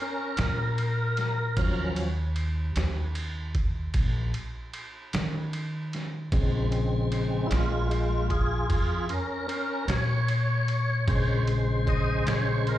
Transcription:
0.02 0.37 C#4 medium
0.02 0.39 A#4 medium
0.37 1.54 A#2 medium
0.37 1.94 A#4 medium
0.37 snare medium
0.37 ride medium
0.78 ride medium
1.17 snare soft
1.17 ride medium
1.57 2.72 D#2 medium
1.57 2.10 F3 medium
1.57 2.11 F#3 soft
1.57 2.11 C#4 medium
1.57 kick loud
1.57 ride medium
1.96 ride medium
2.36 ride medium
2.76 3.91 D#2 medium
2.76 snare loud
2.76 ride medium
3.15 ride medium
3.55 kick medium
3.55 ride medium
3.94 4.31 A#1 medium
3.94 kick medium
3.94 ride medium
4.34 ride medium
4.74 ride medium
5.13 6.29 D#3 medium
5.13 snare loud
5.13 ride medium
5.53 ride medium
5.93 snare soft
5.93 ride medium
6.32 7.47 A#1 loud
6.32 7.47 C#3 medium
6.32 7.48 G#3 medium
6.32 7.48 C4 medium
6.32 kick loud
6.32 ride medium
6.72 ride medium
7.12 ride medium
7.47 7.87 G#3 medium
7.47 7.51 E4 medium
7.51 8.66 A#1 medium
7.51 7.89 F4 medium
7.51 snare loud
7.51 ride medium
7.90 8.27 G#3 medium
7.90 8.28 F4 medium
7.90 ride medium
8.29 8.67 F4 medium
8.29 8.68 G#4 medium
8.29 kick medium
8.29 ride medium
8.69 9.07 F2 medium
8.69 9.06 F4 medium
8.69 9.08 G#4 medium
8.69 kick medium
8.69 ride medium
9.09 9.47 C#4 medium
9.09 9.47 A#4 medium
9.09 ride medium
9.48 9.86 C#4 medium
9.48 9.87 A#4 medium
9.48 ride medium
9.88 11.03 A#2 medium
9.88 11.43 C#5 loud
9.88 snare medium
9.88 ride medium
10.28 ride medium
10.68 ride medium
11.08 12.23 A#1 loud
11.08 12.78 C#3 medium
11.08 12.78 G#3 soft
11.08 12.78 C5 medium
11.08 kick loud
11.08 ride medium
11.47 ride medium
11.87 12.26 D#5 medium
11.87 kick medium
11.87 ride medium
12.27 12.78 A#1 medium
12.27 12.65 C#5 medium
12.27 snare loud
12.27 ride medium
12.67 12.78 A#4 medium
12.67 ride medium

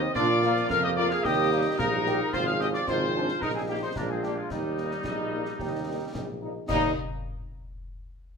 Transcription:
0.00 0.12 D#3 loud
0.00 0.11 C4 loud
0.00 0.15 C4 loud
0.00 0.12 D#5 loud
0.00 0.14 D#6 loud
0.14 0.61 A#2 loud
0.14 1.24 F3 loud
0.14 2.29 A#3 loud
0.14 0.28 D4 loud
0.14 0.66 F4 loud
0.14 0.65 D5 loud
0.14 0.66 D6 loud
0.14 concert bass drum medium
0.14 snare medium
0.14 crash soft
0.42 0.52 F3 medium
0.42 0.52 A#3 medium
0.42 1.21 F4 loud
0.42 snare medium
0.56 snare medium
0.69 1.15 F2 loud
0.69 0.83 A#4 loud
0.69 0.82 F5 loud
0.69 0.86 F6 loud
0.69 concert bass drum loud
0.69 snare medium
0.83 0.90 G4 loud
0.83 0.89 D#5 loud
0.83 0.97 D#6 loud
0.96 1.07 F3 medium
0.96 1.07 A#3 medium
0.96 1.10 F4 loud
0.96 1.09 D5 loud
0.96 1.10 D6 loud
1.10 1.24 G#4 loud
1.10 1.23 F5 loud
1.10 1.16 F6 loud
1.10 snare medium
1.23 1.66 D#2 loud
1.23 2.33 G3 medium
1.23 1.78 G4 loud
1.23 1.54 G4 loud
1.23 1.78 D#5 loud
1.23 1.75 D#6 loud
1.23 concert bass drum medium
1.23 snare medium
1.51 1.61 G3 medium
1.51 1.61 A#3 medium
1.51 1.78 D#4 loud
1.78 2.24 A#1 loud
1.78 2.33 D#4 loud
1.78 1.91 F4 loud
1.78 2.29 A#4 loud
1.78 2.35 A#5 loud
1.78 concert bass drum loud
1.78 snare loud
2.06 2.16 G3 medium
2.06 2.16 A#3 medium
2.06 2.19 G4 loud
2.06 snare medium
2.32 2.79 G#1 loud
2.32 2.84 F3 medium
2.32 2.84 C4 medium
2.32 2.46 F4 loud
2.32 2.84 F4 loud
2.32 2.45 C5 loud
2.32 2.46 C6 loud
2.32 concert bass drum medium
2.32 snare medium
2.32 crash soft
2.46 2.52 G#4 loud
2.46 2.59 F5 loud
2.46 2.53 F6 loud
2.59 2.69 F3 medium
2.59 2.69 G#3 medium
2.59 2.69 C4 medium
2.59 2.66 G4 loud
2.59 2.66 D#5 loud
2.59 2.73 D#6 loud
2.59 snare medium
2.74 2.80 F4 loud
2.74 2.87 D5 loud
2.74 2.89 D6 loud
2.74 snare medium
2.87 3.33 G#1 loud
2.87 3.38 F3 medium
2.87 3.38 C4 medium
2.87 3.00 D#4 medium
2.87 3.38 F4 loud
2.87 3.39 C5 loud
2.87 3.40 C6 loud
2.87 concert bass drum medium
2.87 snare medium
3.14 3.24 F3 medium
3.14 3.25 G#3 medium
3.14 3.24 C4 medium
3.14 3.28 D4 loud
3.28 snare medium
3.41 3.87 A#1 medium
3.41 3.97 G3 medium
3.41 3.48 D#4 loud
3.41 3.97 D#4 medium
3.41 3.75 D#4 medium
3.41 3.55 A#4 loud
3.41 3.54 A#5 loud
3.41 concert bass drum medium
3.41 snare medium
3.55 3.61 C4 medium
3.55 3.61 G#4 medium
3.55 3.68 G#5 medium
3.69 3.79 G3 medium
3.69 3.75 A#3 medium
3.69 3.79 D#4 medium
3.69 3.82 G4 loud
3.69 3.75 G5 medium
3.82 3.89 D#4 medium
3.82 3.95 C5 loud
3.82 3.88 C6 medium
3.96 4.42 A#1 medium
3.96 4.47 G#3 medium
3.96 4.09 D4 medium
3.96 4.47 D4 medium
3.96 4.48 F4 medium
3.96 4.10 A#4 medium
3.96 4.08 A#5 medium
3.96 concert bass drum medium
3.96 snare medium
4.09 4.23 C4 medium
4.09 4.23 G#4 loud
4.09 4.15 G#5 medium
4.22 4.33 G#3 medium
4.22 4.33 A#3 medium
4.22 4.38 A#3 medium
4.22 4.33 D4 medium
4.22 4.36 G4 medium
4.22 4.36 G5 medium
4.22 snare medium
4.37 4.51 G#3 medium
4.37 4.50 F4 medium
4.37 4.43 F5 medium
4.50 4.96 D#2 medium
4.50 6.37 G3 medium
4.50 6.42 G3 medium
4.50 6.42 D#4 loud
4.50 6.42 D#4 medium
4.50 4.97 G4 medium
4.50 6.37 D#5 loud
4.50 concert bass drum medium
4.50 snare medium
4.50 crash soft
4.77 4.87 G3 medium
4.77 4.88 A#3 medium
4.77 4.87 D#4 medium
4.77 snare medium
4.91 snare medium
5.04 5.51 A#1 medium
5.04 5.56 D#4 medium
5.04 concert bass drum medium
5.04 snare medium
5.32 5.42 G3 medium
5.32 5.42 A#3 medium
5.32 5.43 D#4 medium
5.46 snare medium
5.59 6.05 D#2 medium
5.59 6.11 G4 medium
5.59 concert bass drum medium
5.59 snare medium
5.87 5.97 G3 medium
5.87 5.97 A#3 medium
5.87 5.97 D#4 medium
6.14 6.60 A#1 medium
6.14 6.27 G4 medium
6.14 concert bass drum medium
6.14 snare medium
6.41 6.51 G3 medium
6.41 6.51 A#3 medium
6.41 6.51 D#4 medium
6.41 6.67 D#4 medium
6.68 6.92 D#2 loud
6.68 6.91 G3 loud
6.68 6.92 G3 loud
6.68 6.91 A#3 loud
6.68 6.91 D#4 loud
6.68 6.92 D#4 loud
6.68 6.92 D#5 loud
6.68 6.99 D#6 medium
6.68 concert bass drum loud
6.68 snare loud
6.68 crash medium

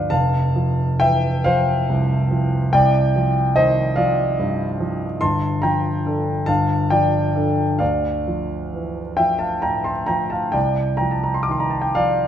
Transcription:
0.00 0.12 D2 soft
0.00 0.12 D#3 soft
0.00 0.12 F3 soft
0.00 0.12 B4 medium
0.00 0.12 D5 medium
0.00 0.11 F5 medium
0.10 2.69 F1 soft
0.10 0.96 F5 medium
0.10 0.99 A5 medium
0.56 1.27 F3 soft
1.00 1.45 E3 soft
1.00 1.41 E5 medium
1.00 1.44 G5 medium
1.44 2.14 F3 soft
1.44 2.69 C5 medium
1.44 2.72 F5 medium
1.89 2.56 C2 soft
2.31 2.73 F3 soft
2.73 5.19 C2 soft
2.73 3.52 D5 medium
2.73 3.55 G5 medium
3.16 3.81 F3 soft
3.56 3.97 D#3 soft
3.56 3.94 C5 medium
3.56 3.96 D#5 medium
3.96 4.64 F3 soft
3.96 4.35 D5 medium
3.96 4.38 F5 medium
4.40 5.06 G2 soft
4.80 5.22 F3 soft
5.21 6.45 G1 soft
5.21 5.61 A5 medium
5.21 5.63 C6 medium
5.62 6.31 F3 soft
5.62 6.44 G5 medium
5.62 6.47 A#5 medium
6.06 6.44 D4 soft
6.06 6.44 A4 soft
6.46 7.76 G1 soft
6.46 6.88 F5 medium
6.46 6.90 A5 medium
6.90 7.62 F3 soft
6.90 7.77 D5 medium
6.90 7.80 G5 medium
7.35 7.77 D4 soft
7.35 7.77 A4 soft
7.79 10.51 D2 soft
7.79 9.14 D5 soft
7.79 9.17 F5 medium
8.28 9.00 F3 soft
8.73 9.18 E3 soft
9.17 9.90 F3 soft
9.17 9.39 E5 soft
9.17 9.40 G5 medium
9.39 9.61 F5 soft
9.39 9.62 A5 medium
9.62 10.37 A2 soft
9.62 9.84 G5 soft
9.62 9.85 A#5 medium
9.84 10.07 A5 soft
9.84 10.08 C6 medium
10.06 10.55 F3 soft
10.06 10.30 G5 medium
10.06 10.31 A#5 medium
10.30 10.53 F5 soft
10.30 10.54 A5 medium
10.52 12.28 C2 soft
10.52 10.93 D5 soft
10.52 10.96 G5 medium
10.97 11.76 F3 soft
10.97 11.13 G5 soft
10.97 11.13 A#5 medium
11.11 11.25 A5 soft
11.24 11.35 A#5 medium
11.34 11.44 C6 soft
11.43 11.52 D6 medium
11.48 11.95 D#3 soft
11.48 11.61 C6 medium
11.60 11.71 A#5 medium
11.70 11.82 A5 soft
11.82 11.94 G5 soft
11.95 12.28 F3 soft
11.95 12.28 D5 medium
11.95 12.28 F5 medium

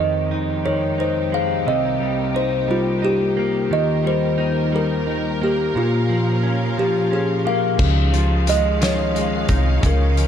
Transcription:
0.00 1.64 F2 soft
0.00 1.66 F2 medium
0.00 3.66 C3 medium
0.00 0.65 D#3 soft
0.00 1.64 G#3 soft
0.00 3.67 D#4 soft
0.00 5.71 G4 medium
0.00 0.61 D#5 medium
0.31 0.98 D#4 soft
0.65 2.00 D#3 soft
0.65 1.00 C#5 medium
0.98 2.34 D#4 soft
0.98 1.31 C5 medium
1.32 1.73 G#3 medium
1.32 1.49 F5 medium
1.67 3.69 C2 medium
1.67 3.70 C3 medium
1.67 5.72 A#3 soft
1.67 2.37 D#5 medium
2.00 2.68 G3 soft
2.34 3.02 D#4 medium
2.34 2.70 C5 medium
2.68 3.77 G3 soft
2.68 3.05 F4 medium
3.02 3.77 D#4 soft
3.02 3.74 G4 medium
3.37 5.41 A#3 soft
3.71 5.73 D#2 medium
3.71 5.73 D#3 soft
3.71 5.75 D#3 medium
3.71 7.76 A#4 medium
3.71 4.07 D#5 medium
4.04 4.71 G3 soft
4.04 4.76 C5 medium
4.38 5.06 D#4 medium
4.72 5.81 G3 soft
4.72 5.44 A#4 medium
5.07 5.82 D#4 soft
5.41 5.82 A#3 soft
5.41 5.77 G4 medium
5.75 7.79 A#2 medium
5.75 7.78 A#2 medium
5.75 7.78 F3 medium
5.75 7.78 C#4 soft
5.75 7.08 F4 medium
5.75 7.78 F5 medium
6.10 6.77 F3 soft
6.43 7.11 C#4 soft
6.78 8.13 F3 soft
6.78 7.13 G4 medium
7.11 9.49 C#4 soft
7.11 7.47 G#4 medium
7.45 7.86 A#3 soft
7.45 8.51 F5 medium
7.79 9.45 C#2 medium
7.79 10.28 D#3 medium
7.79 10.28 G#3 medium
7.79 10.28 C#4 medium
7.79 10.28 D#4 medium
7.79 10.28 F5 medium
7.79 kick medium
7.79 crash medium
8.14 8.80 F3 soft
8.14 closed hi-hat soft
8.47 9.14 G#3 medium
8.47 8.64 D#5 medium
8.47 closed hi-hat medium
8.81 10.16 F3 medium
8.81 9.87 C#5 medium
8.81 snare loud
8.81 closed hi-hat medium
9.15 10.28 G#3 soft
9.15 closed hi-hat soft
9.49 9.81 C2 medium
9.49 10.28 D#4 medium
9.49 kick medium
9.49 closed hi-hat medium
9.83 10.28 C#2 medium
9.83 10.28 C#3 medium
9.83 10.28 A#4 medium
9.83 kick loud
9.83 closed hi-hat medium
10.17 10.28 F3 soft
10.17 closed hi-hat soft

